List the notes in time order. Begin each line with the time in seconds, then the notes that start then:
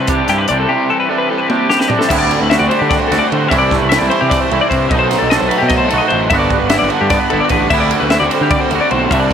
Already playing: E3
0.00 C3
0.07 C3 G3 C4 D4 E4 G4, kick, closed hi-hat
0.28 G2 E4 G4, snare, closed hi-hat
0.39 G4 B4
0.48 C2 C3 G3 C4 D4 E4 D5, closed hi-hat
0.60 A4
0.69 C3 G3 C4 E4 G4
0.89 E3 A4
1.00 B4
1.09 C3 G3 C4 D4 E4 A4
1.18 B4
1.29 G3 C4 E4 A4
1.38 B4
1.49 C3 G3 C4 D4 E4 G4, high tom
1.70 G4, snare
1.79 B4, snare
1.88 C3 G3 C4 D4 E4 D5, floor tom
1.99 A4, snare
2.09 D2 D3 G3 A3 B3 C4 F#4 E5, kick, crash
2.13 E4
2.19 D5
2.30 A3 C4 F#4, ride
2.40 D2 B4
2.50 D3 A3 C4 F#4 E5, snare, ride
2.59 D2 D5
2.69 G3 A3 C4 F#4 C5, ride
2.79 D3 G4
2.89 D5, kick, snare, ride
2.99 C5
3.08 D2 F#4 A4, ride
3.12 A3 C4, snare
3.19 D5
3.28 A2 C5
3.32 D3 A3 C4 F#4, ride
3.48 C2 C3 E3 G3 A3 C4 D4 E5, kick, ride
3.53 E4
3.59 D5
3.71 G3 A3 C4 E4, kick, snare, ride
3.78 C2 B4
3.89 C3 G3 C4 E4 E5, snare, ride
3.99 C2 D5
4.10 E3 G3 C4 E4 C5, ride
4.21 C3 G4
4.30 A3 D5, kick, snare, ride
4.40 C5
4.51 C2 G3 C4 E4 A4, ride
4.61 D5
4.70 G2 C3 G3 C4 E4 C5, kick, ride
4.89 B1 B2 F#3 A3 D#4 D#5, kick, ride
4.94 D#4
4.99 C5
5.11 F#3 A3 D#4, snare, ride
5.19 B1 A4
5.30 B2 F#3 A3 D#4 A4 D#5, snare, ride
5.38 B1 C5
5.49 F#3 A3 D#4 B4, ride
5.53 F#3
5.58 G4
5.63 B2
5.68 D#5, kick, snare, ride
5.78 C5
5.89 F#3 A3 D#4 A4, ride
5.93 B1 F#4
5.98 D#5
6.08 F#2 B2 C5, ride
6.12 A1 F#3 A3 D#4
6.30 G1 G2 D3 G3 B3 D4 E5, kick, ride
6.34 F#4
6.39 D5
6.50 G3 B3 D4, kick, ride
6.59 G1 B4
6.70 G2 D3 G3 E4 E5, snare, ride
6.74 B3 D4
6.79 G1 D5
6.84 F#4
6.90 D3 G3 B3 D4 B4, ride
7.01 G2 G4
7.10 B3 D5, kick, snare, ride
7.19 B4
7.30 G1 G3 B3 D4 E4 A4, ride
7.40 D5
7.44 F#4
7.49 A1 D3 G3 B3 D4 B4, kick, ride
7.70 D2 D3 G3 A3 B3 C4 E4 F#4 E5, kick, crash
7.80 D5
7.91 A3 C4 F#4, ride
8.00 D2 B4
8.10 D3 A3 C4 E4 F#4 E5, snare, ride
8.20 D2 F#4 D5
8.31 G3 A3 C4 F#4 C5, ride
8.41 D3 G4
8.51 D5, kick, ride
8.61 C5
8.71 D2 A3 C4 F#4 A4, ride
8.75 F#4
8.81 D5
8.91 B1 A2 D3 A3 C4 F#4 C5, ride
9.11 C2 C3 G3 C4 D4 E4 E5, kick, ride
9.20 D5